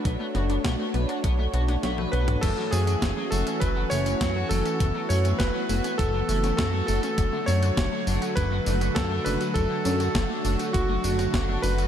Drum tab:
CC |----------------|x---------------|----------------|----------------|
HH |x-xxx-xxx-xxx-xx|x-oxx-oxx-oxx-ox|x-oxx-oxx-oxx-ox|x-oxx-oxx-oxx-ox|
TB |----------------|x-xxx-xxx-xxx-xx|x-xxx-xxx-xxx-xx|x-xxx-xxx-xxx-xx|
SD |--o-o------oo---|--o-o-------o---|----o------oo---|--o-o-------o---|
T1 |-------------o--|----------------|----------------|----------------|
T2 |---------------o|----------------|----------------|----------------|
BD |o---o---o-------|o---o---o---o---|o---o---o---o---|o---o---o---o---|

CC |----------------|
HH |x-oxx-oxx-oxx-ox|
TB |x-xxx-xxx-xxx-xx|
SD |----o------oo---|
T1 |----------------|
T2 |----------------|
BD |o---o---o---o---|